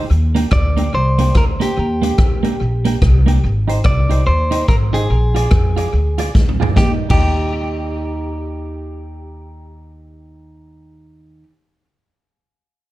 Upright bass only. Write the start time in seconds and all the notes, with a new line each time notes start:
0.10 D#2
0.52 D2
0.94 C2
1.35 D2
1.77 D#2
2.19 D2
2.61 A#1
3.02 C2
3.44 G#1
3.85 C2
4.28 D#2
4.69 G#1
5.10 A#1
5.52 F2
5.93 D2
6.35 D2
6.77 D#2
7.11 D#2